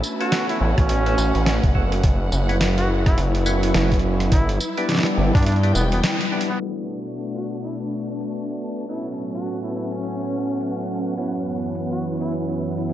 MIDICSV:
0, 0, Header, 1, 7, 480
1, 0, Start_track
1, 0, Key_signature, 2, "minor"
1, 0, Tempo, 571429
1, 1709, Time_signature, 4, 2, 24, 8
1, 10864, End_track
2, 0, Start_track
2, 0, Title_t, "String section"
2, 0, Program_c, 0, 48
2, 0, Note_on_c, 0, 61, 72
2, 0, Note_on_c, 0, 71, 84
2, 0, Note_on_c, 0, 81, 88
2, 395, Note_on_c, 0, 78, 80
2, 566, Note_off_c, 0, 81, 0
2, 1708, Note_on_c, 0, 64, 92
2, 2487, Note_off_c, 0, 61, 0
2, 3629, Note_off_c, 0, 78, 0
2, 4350, Note_on_c, 0, 79, 81
2, 5546, Note_on_c, 0, 62, 74
2, 5548, Note_off_c, 0, 79, 0
2, 5795, Note_on_c, 0, 81, 76
2, 6326, Note_off_c, 0, 64, 0
2, 7467, Note_off_c, 0, 62, 0
2, 7468, Note_off_c, 0, 71, 0
2, 7468, Note_on_c, 0, 61, 82
2, 7679, Note_on_c, 0, 78, 72
2, 7954, Note_on_c, 0, 71, 70
2, 9390, Note_on_c, 0, 64, 79
2, 10166, Note_off_c, 0, 61, 0
2, 10167, Note_off_c, 0, 81, 0
2, 10864, Note_off_c, 0, 64, 0
2, 10864, Note_off_c, 0, 71, 0
2, 10864, Note_off_c, 0, 78, 0
2, 10864, End_track
3, 0, Start_track
3, 0, Title_t, "Trumpet"
3, 0, Program_c, 1, 56
3, 173, Note_on_c, 1, 66, 95
3, 384, Note_off_c, 1, 66, 0
3, 412, Note_on_c, 1, 64, 90
3, 474, Note_off_c, 1, 64, 0
3, 508, Note_on_c, 1, 64, 78
3, 601, Note_off_c, 1, 64, 0
3, 654, Note_on_c, 1, 61, 100
3, 1316, Note_off_c, 1, 61, 0
3, 2331, Note_on_c, 1, 66, 94
3, 2437, Note_off_c, 1, 66, 0
3, 2572, Note_on_c, 1, 64, 94
3, 2677, Note_off_c, 1, 64, 0
3, 3629, Note_on_c, 1, 64, 92
3, 3779, Note_off_c, 1, 64, 0
3, 4489, Note_on_c, 1, 62, 92
3, 4552, Note_off_c, 1, 62, 0
3, 4588, Note_on_c, 1, 62, 75
3, 4680, Note_off_c, 1, 62, 0
3, 4828, Note_on_c, 1, 59, 90
3, 4921, Note_off_c, 1, 59, 0
3, 4975, Note_on_c, 1, 59, 79
3, 5035, Note_off_c, 1, 59, 0
3, 5452, Note_on_c, 1, 59, 87
3, 5514, Note_off_c, 1, 59, 0
3, 5547, Note_on_c, 1, 59, 71
3, 5640, Note_off_c, 1, 59, 0
3, 6169, Note_on_c, 1, 66, 85
3, 6276, Note_off_c, 1, 66, 0
3, 6409, Note_on_c, 1, 64, 86
3, 6516, Note_off_c, 1, 64, 0
3, 7464, Note_on_c, 1, 64, 87
3, 7616, Note_off_c, 1, 64, 0
3, 7848, Note_on_c, 1, 66, 89
3, 8062, Note_off_c, 1, 66, 0
3, 8086, Note_on_c, 1, 64, 81
3, 8151, Note_off_c, 1, 64, 0
3, 8188, Note_on_c, 1, 64, 75
3, 8280, Note_off_c, 1, 64, 0
3, 8331, Note_on_c, 1, 61, 89
3, 8994, Note_off_c, 1, 61, 0
3, 10010, Note_on_c, 1, 66, 85
3, 10116, Note_off_c, 1, 66, 0
3, 10252, Note_on_c, 1, 64, 89
3, 10358, Note_off_c, 1, 64, 0
3, 10864, End_track
4, 0, Start_track
4, 0, Title_t, "Tonewheel organ"
4, 0, Program_c, 2, 16
4, 173, Note_on_c, 2, 59, 92
4, 173, Note_on_c, 2, 61, 81
4, 173, Note_on_c, 2, 66, 82
4, 173, Note_on_c, 2, 69, 99
4, 858, Note_off_c, 2, 59, 0
4, 858, Note_off_c, 2, 61, 0
4, 858, Note_off_c, 2, 66, 0
4, 858, Note_off_c, 2, 69, 0
4, 893, Note_on_c, 2, 59, 83
4, 893, Note_on_c, 2, 69, 89
4, 894, Note_on_c, 2, 61, 77
4, 894, Note_on_c, 2, 66, 78
4, 967, Note_off_c, 2, 59, 0
4, 967, Note_off_c, 2, 66, 0
4, 967, Note_off_c, 2, 69, 0
4, 968, Note_off_c, 2, 61, 0
4, 1468, Note_on_c, 2, 61, 80
4, 1469, Note_on_c, 2, 59, 86
4, 1469, Note_on_c, 2, 66, 77
4, 1469, Note_on_c, 2, 69, 97
4, 1635, Note_off_c, 2, 59, 0
4, 1635, Note_off_c, 2, 61, 0
4, 1635, Note_off_c, 2, 66, 0
4, 1635, Note_off_c, 2, 69, 0
4, 2091, Note_on_c, 2, 61, 71
4, 2092, Note_on_c, 2, 59, 79
4, 2092, Note_on_c, 2, 64, 70
4, 2092, Note_on_c, 2, 66, 87
4, 2166, Note_off_c, 2, 61, 0
4, 2167, Note_off_c, 2, 59, 0
4, 2167, Note_off_c, 2, 64, 0
4, 2167, Note_off_c, 2, 66, 0
4, 2908, Note_on_c, 2, 59, 79
4, 2908, Note_on_c, 2, 61, 72
4, 2908, Note_on_c, 2, 64, 74
4, 2908, Note_on_c, 2, 66, 87
4, 3617, Note_off_c, 2, 59, 0
4, 3617, Note_off_c, 2, 61, 0
4, 3617, Note_off_c, 2, 64, 0
4, 3617, Note_off_c, 2, 66, 0
4, 4012, Note_on_c, 2, 59, 89
4, 4012, Note_on_c, 2, 62, 82
4, 4012, Note_on_c, 2, 64, 84
4, 4012, Note_on_c, 2, 67, 104
4, 4698, Note_off_c, 2, 59, 0
4, 4698, Note_off_c, 2, 62, 0
4, 4698, Note_off_c, 2, 64, 0
4, 4698, Note_off_c, 2, 67, 0
4, 4731, Note_on_c, 2, 59, 83
4, 4732, Note_on_c, 2, 62, 79
4, 4732, Note_on_c, 2, 64, 77
4, 4732, Note_on_c, 2, 67, 92
4, 4806, Note_off_c, 2, 59, 0
4, 4807, Note_off_c, 2, 62, 0
4, 4807, Note_off_c, 2, 64, 0
4, 4807, Note_off_c, 2, 67, 0
4, 5308, Note_on_c, 2, 59, 85
4, 5308, Note_on_c, 2, 62, 80
4, 5308, Note_on_c, 2, 64, 80
4, 5308, Note_on_c, 2, 67, 96
4, 5475, Note_off_c, 2, 59, 0
4, 5475, Note_off_c, 2, 62, 0
4, 5475, Note_off_c, 2, 64, 0
4, 5475, Note_off_c, 2, 67, 0
4, 5547, Note_on_c, 2, 62, 65
4, 5548, Note_on_c, 2, 57, 75
4, 5548, Note_on_c, 2, 59, 67
4, 5548, Note_on_c, 2, 66, 80
4, 7445, Note_off_c, 2, 57, 0
4, 7445, Note_off_c, 2, 59, 0
4, 7445, Note_off_c, 2, 62, 0
4, 7445, Note_off_c, 2, 66, 0
4, 7468, Note_on_c, 2, 57, 73
4, 7469, Note_on_c, 2, 59, 68
4, 7469, Note_on_c, 2, 61, 65
4, 7469, Note_on_c, 2, 66, 82
4, 9365, Note_off_c, 2, 57, 0
4, 9366, Note_off_c, 2, 59, 0
4, 9366, Note_off_c, 2, 61, 0
4, 9366, Note_off_c, 2, 66, 0
4, 9388, Note_on_c, 2, 54, 75
4, 9388, Note_on_c, 2, 59, 67
4, 9388, Note_on_c, 2, 61, 70
4, 9389, Note_on_c, 2, 64, 82
4, 10864, Note_off_c, 2, 54, 0
4, 10864, Note_off_c, 2, 59, 0
4, 10864, Note_off_c, 2, 61, 0
4, 10864, Note_off_c, 2, 64, 0
4, 10864, End_track
5, 0, Start_track
5, 0, Title_t, "Ambient pad"
5, 0, Program_c, 3, 92
5, 0, Note_on_c, 3, 57, 78
5, 0, Note_on_c, 3, 61, 70
5, 0, Note_on_c, 3, 66, 90
5, 1676, Note_off_c, 3, 57, 0
5, 1691, Note_off_c, 3, 61, 0
5, 1691, Note_off_c, 3, 66, 0
5, 1710, Note_on_c, 3, 54, 81
5, 1711, Note_on_c, 3, 71, 88
5, 1712, Note_on_c, 3, 64, 75
5, 3610, Note_off_c, 3, 54, 0
5, 3629, Note_on_c, 3, 55, 81
5, 5516, Note_off_c, 3, 71, 0
5, 5517, Note_off_c, 3, 64, 0
5, 5530, Note_off_c, 3, 55, 0
5, 5550, Note_on_c, 3, 57, 71
5, 5550, Note_on_c, 3, 62, 86
5, 5551, Note_on_c, 3, 47, 74
5, 7450, Note_off_c, 3, 57, 0
5, 7450, Note_off_c, 3, 62, 0
5, 7451, Note_off_c, 3, 47, 0
5, 7467, Note_on_c, 3, 45, 74
5, 7467, Note_on_c, 3, 54, 72
5, 7468, Note_on_c, 3, 59, 71
5, 7469, Note_on_c, 3, 61, 83
5, 9369, Note_off_c, 3, 45, 0
5, 9369, Note_off_c, 3, 54, 0
5, 9370, Note_off_c, 3, 61, 0
5, 9391, Note_on_c, 3, 42, 75
5, 9391, Note_on_c, 3, 52, 70
5, 10864, Note_off_c, 3, 42, 0
5, 10864, Note_off_c, 3, 52, 0
5, 10864, Note_off_c, 3, 59, 0
5, 10864, End_track
6, 0, Start_track
6, 0, Title_t, "Analog synth bass"
6, 0, Program_c, 4, 38
6, 509, Note_on_c, 4, 33, 93
6, 629, Note_off_c, 4, 33, 0
6, 653, Note_on_c, 4, 33, 98
6, 974, Note_off_c, 4, 33, 0
6, 990, Note_on_c, 4, 33, 100
6, 1110, Note_off_c, 4, 33, 0
6, 1132, Note_on_c, 4, 33, 98
6, 1349, Note_off_c, 4, 33, 0
6, 1374, Note_on_c, 4, 30, 94
6, 1694, Note_off_c, 4, 30, 0
6, 1710, Note_on_c, 4, 30, 99
6, 1934, Note_off_c, 4, 30, 0
6, 1949, Note_on_c, 4, 30, 98
6, 2654, Note_off_c, 4, 30, 0
6, 2670, Note_on_c, 4, 30, 97
6, 3134, Note_off_c, 4, 30, 0
6, 3149, Note_on_c, 4, 30, 99
6, 3614, Note_off_c, 4, 30, 0
6, 3628, Note_on_c, 4, 31, 97
6, 3853, Note_off_c, 4, 31, 0
6, 4347, Note_on_c, 4, 31, 97
6, 4469, Note_off_c, 4, 31, 0
6, 4493, Note_on_c, 4, 43, 97
6, 4813, Note_off_c, 4, 43, 0
6, 4829, Note_on_c, 4, 28, 98
6, 5054, Note_off_c, 4, 28, 0
6, 10864, End_track
7, 0, Start_track
7, 0, Title_t, "Drums"
7, 29, Note_on_c, 9, 54, 67
7, 113, Note_off_c, 9, 54, 0
7, 173, Note_on_c, 9, 42, 49
7, 257, Note_off_c, 9, 42, 0
7, 269, Note_on_c, 9, 38, 115
7, 269, Note_on_c, 9, 42, 62
7, 353, Note_off_c, 9, 38, 0
7, 353, Note_off_c, 9, 42, 0
7, 414, Note_on_c, 9, 42, 35
7, 498, Note_off_c, 9, 42, 0
7, 653, Note_on_c, 9, 37, 52
7, 653, Note_on_c, 9, 42, 50
7, 654, Note_on_c, 9, 36, 105
7, 737, Note_off_c, 9, 37, 0
7, 737, Note_off_c, 9, 42, 0
7, 738, Note_off_c, 9, 36, 0
7, 749, Note_on_c, 9, 42, 63
7, 833, Note_off_c, 9, 42, 0
7, 893, Note_on_c, 9, 42, 35
7, 977, Note_off_c, 9, 42, 0
7, 990, Note_on_c, 9, 54, 67
7, 1074, Note_off_c, 9, 54, 0
7, 1134, Note_on_c, 9, 42, 50
7, 1218, Note_off_c, 9, 42, 0
7, 1230, Note_on_c, 9, 38, 114
7, 1230, Note_on_c, 9, 42, 60
7, 1314, Note_off_c, 9, 38, 0
7, 1314, Note_off_c, 9, 42, 0
7, 1373, Note_on_c, 9, 36, 105
7, 1373, Note_on_c, 9, 42, 35
7, 1457, Note_off_c, 9, 36, 0
7, 1457, Note_off_c, 9, 42, 0
7, 1470, Note_on_c, 9, 36, 59
7, 1554, Note_off_c, 9, 36, 0
7, 1614, Note_on_c, 9, 42, 52
7, 1698, Note_off_c, 9, 42, 0
7, 1709, Note_on_c, 9, 42, 65
7, 1710, Note_on_c, 9, 36, 120
7, 1793, Note_off_c, 9, 42, 0
7, 1794, Note_off_c, 9, 36, 0
7, 1949, Note_on_c, 9, 54, 66
7, 2033, Note_off_c, 9, 54, 0
7, 2094, Note_on_c, 9, 42, 50
7, 2178, Note_off_c, 9, 42, 0
7, 2191, Note_on_c, 9, 38, 112
7, 2191, Note_on_c, 9, 42, 64
7, 2275, Note_off_c, 9, 38, 0
7, 2275, Note_off_c, 9, 42, 0
7, 2333, Note_on_c, 9, 42, 36
7, 2417, Note_off_c, 9, 42, 0
7, 2572, Note_on_c, 9, 37, 55
7, 2572, Note_on_c, 9, 42, 51
7, 2573, Note_on_c, 9, 36, 99
7, 2656, Note_off_c, 9, 37, 0
7, 2656, Note_off_c, 9, 42, 0
7, 2657, Note_off_c, 9, 36, 0
7, 2669, Note_on_c, 9, 42, 63
7, 2753, Note_off_c, 9, 42, 0
7, 2811, Note_on_c, 9, 42, 37
7, 2895, Note_off_c, 9, 42, 0
7, 2906, Note_on_c, 9, 54, 69
7, 2990, Note_off_c, 9, 54, 0
7, 3050, Note_on_c, 9, 42, 51
7, 3134, Note_off_c, 9, 42, 0
7, 3145, Note_on_c, 9, 38, 112
7, 3145, Note_on_c, 9, 42, 62
7, 3229, Note_off_c, 9, 38, 0
7, 3229, Note_off_c, 9, 42, 0
7, 3290, Note_on_c, 9, 42, 32
7, 3292, Note_on_c, 9, 36, 58
7, 3307, Note_off_c, 9, 42, 0
7, 3307, Note_on_c, 9, 42, 28
7, 3354, Note_off_c, 9, 42, 0
7, 3354, Note_on_c, 9, 42, 22
7, 3376, Note_off_c, 9, 36, 0
7, 3438, Note_off_c, 9, 42, 0
7, 3530, Note_on_c, 9, 37, 39
7, 3530, Note_on_c, 9, 42, 52
7, 3614, Note_off_c, 9, 37, 0
7, 3614, Note_off_c, 9, 42, 0
7, 3627, Note_on_c, 9, 42, 68
7, 3628, Note_on_c, 9, 36, 117
7, 3711, Note_off_c, 9, 42, 0
7, 3712, Note_off_c, 9, 36, 0
7, 3771, Note_on_c, 9, 42, 37
7, 3855, Note_off_c, 9, 42, 0
7, 3867, Note_on_c, 9, 54, 68
7, 3951, Note_off_c, 9, 54, 0
7, 4011, Note_on_c, 9, 42, 53
7, 4095, Note_off_c, 9, 42, 0
7, 4106, Note_on_c, 9, 38, 52
7, 4106, Note_on_c, 9, 42, 66
7, 4131, Note_off_c, 9, 38, 0
7, 4131, Note_on_c, 9, 38, 60
7, 4155, Note_off_c, 9, 38, 0
7, 4155, Note_on_c, 9, 38, 72
7, 4180, Note_off_c, 9, 38, 0
7, 4180, Note_on_c, 9, 38, 81
7, 4189, Note_off_c, 9, 38, 0
7, 4189, Note_on_c, 9, 38, 92
7, 4190, Note_off_c, 9, 42, 0
7, 4228, Note_off_c, 9, 38, 0
7, 4228, Note_on_c, 9, 38, 98
7, 4253, Note_on_c, 9, 42, 38
7, 4312, Note_off_c, 9, 38, 0
7, 4337, Note_off_c, 9, 42, 0
7, 4492, Note_on_c, 9, 36, 107
7, 4494, Note_on_c, 9, 37, 56
7, 4494, Note_on_c, 9, 42, 51
7, 4510, Note_off_c, 9, 42, 0
7, 4510, Note_on_c, 9, 42, 43
7, 4557, Note_off_c, 9, 42, 0
7, 4557, Note_on_c, 9, 42, 35
7, 4576, Note_off_c, 9, 36, 0
7, 4578, Note_off_c, 9, 37, 0
7, 4590, Note_off_c, 9, 42, 0
7, 4590, Note_on_c, 9, 42, 65
7, 4671, Note_off_c, 9, 42, 0
7, 4671, Note_on_c, 9, 42, 19
7, 4733, Note_off_c, 9, 42, 0
7, 4733, Note_on_c, 9, 42, 39
7, 4817, Note_off_c, 9, 42, 0
7, 4831, Note_on_c, 9, 54, 67
7, 4915, Note_off_c, 9, 54, 0
7, 4973, Note_on_c, 9, 42, 53
7, 5057, Note_off_c, 9, 42, 0
7, 5070, Note_on_c, 9, 38, 113
7, 5070, Note_on_c, 9, 42, 66
7, 5154, Note_off_c, 9, 38, 0
7, 5154, Note_off_c, 9, 42, 0
7, 5213, Note_on_c, 9, 42, 37
7, 5297, Note_off_c, 9, 42, 0
7, 5382, Note_on_c, 9, 42, 55
7, 5466, Note_off_c, 9, 42, 0
7, 5550, Note_on_c, 9, 42, 65
7, 5550, Note_on_c, 9, 49, 81
7, 5634, Note_off_c, 9, 42, 0
7, 5634, Note_off_c, 9, 49, 0
7, 5934, Note_on_c, 9, 42, 51
7, 6018, Note_off_c, 9, 42, 0
7, 6029, Note_on_c, 9, 42, 66
7, 6113, Note_off_c, 9, 42, 0
7, 6175, Note_on_c, 9, 42, 36
7, 6259, Note_off_c, 9, 42, 0
7, 6414, Note_on_c, 9, 42, 52
7, 6498, Note_off_c, 9, 42, 0
7, 6509, Note_on_c, 9, 42, 62
7, 6593, Note_off_c, 9, 42, 0
7, 6652, Note_on_c, 9, 42, 36
7, 6736, Note_off_c, 9, 42, 0
7, 6892, Note_on_c, 9, 42, 50
7, 6976, Note_off_c, 9, 42, 0
7, 6988, Note_on_c, 9, 42, 61
7, 7072, Note_off_c, 9, 42, 0
7, 7133, Note_on_c, 9, 42, 35
7, 7217, Note_off_c, 9, 42, 0
7, 7372, Note_on_c, 9, 42, 50
7, 7456, Note_off_c, 9, 42, 0
7, 7468, Note_on_c, 9, 42, 29
7, 7504, Note_off_c, 9, 42, 0
7, 7504, Note_on_c, 9, 42, 33
7, 7541, Note_off_c, 9, 42, 0
7, 7541, Note_on_c, 9, 42, 37
7, 7577, Note_off_c, 9, 42, 0
7, 7577, Note_on_c, 9, 42, 40
7, 7612, Note_off_c, 9, 42, 0
7, 7612, Note_on_c, 9, 42, 44
7, 7636, Note_off_c, 9, 42, 0
7, 7636, Note_on_c, 9, 42, 48
7, 7661, Note_off_c, 9, 42, 0
7, 7661, Note_on_c, 9, 42, 54
7, 7686, Note_off_c, 9, 42, 0
7, 7686, Note_on_c, 9, 42, 57
7, 7770, Note_off_c, 9, 42, 0
7, 7853, Note_on_c, 9, 42, 52
7, 7937, Note_off_c, 9, 42, 0
7, 7949, Note_on_c, 9, 42, 64
7, 8033, Note_off_c, 9, 42, 0
7, 8093, Note_on_c, 9, 42, 34
7, 8177, Note_off_c, 9, 42, 0
7, 8332, Note_on_c, 9, 42, 52
7, 8416, Note_off_c, 9, 42, 0
7, 8428, Note_on_c, 9, 42, 66
7, 8512, Note_off_c, 9, 42, 0
7, 8573, Note_on_c, 9, 42, 37
7, 8657, Note_off_c, 9, 42, 0
7, 8812, Note_on_c, 9, 42, 53
7, 8896, Note_off_c, 9, 42, 0
7, 8909, Note_on_c, 9, 42, 65
7, 8993, Note_off_c, 9, 42, 0
7, 9055, Note_on_c, 9, 42, 16
7, 9070, Note_off_c, 9, 42, 0
7, 9070, Note_on_c, 9, 42, 22
7, 9103, Note_off_c, 9, 42, 0
7, 9103, Note_on_c, 9, 42, 25
7, 9118, Note_off_c, 9, 42, 0
7, 9118, Note_on_c, 9, 42, 29
7, 9134, Note_off_c, 9, 42, 0
7, 9134, Note_on_c, 9, 42, 30
7, 9218, Note_off_c, 9, 42, 0
7, 9390, Note_on_c, 9, 42, 63
7, 9474, Note_off_c, 9, 42, 0
7, 9773, Note_on_c, 9, 42, 51
7, 9857, Note_off_c, 9, 42, 0
7, 9870, Note_on_c, 9, 42, 64
7, 9954, Note_off_c, 9, 42, 0
7, 10014, Note_on_c, 9, 42, 34
7, 10098, Note_off_c, 9, 42, 0
7, 10254, Note_on_c, 9, 42, 50
7, 10338, Note_off_c, 9, 42, 0
7, 10349, Note_on_c, 9, 42, 64
7, 10433, Note_off_c, 9, 42, 0
7, 10492, Note_on_c, 9, 42, 36
7, 10576, Note_off_c, 9, 42, 0
7, 10733, Note_on_c, 9, 42, 50
7, 10817, Note_off_c, 9, 42, 0
7, 10829, Note_on_c, 9, 42, 61
7, 10864, Note_off_c, 9, 42, 0
7, 10864, End_track
0, 0, End_of_file